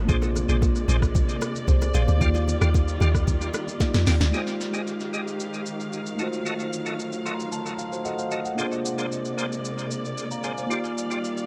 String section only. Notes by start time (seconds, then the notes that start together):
0.09 C3 G#3 A#3 D5
2.21 D#3 G3 F4
4.34 D#3 G#3 G4 F5
6.19 F#3 A3
8.58 C3 G#3 A#3 D5
10.70 D#3 G3 F5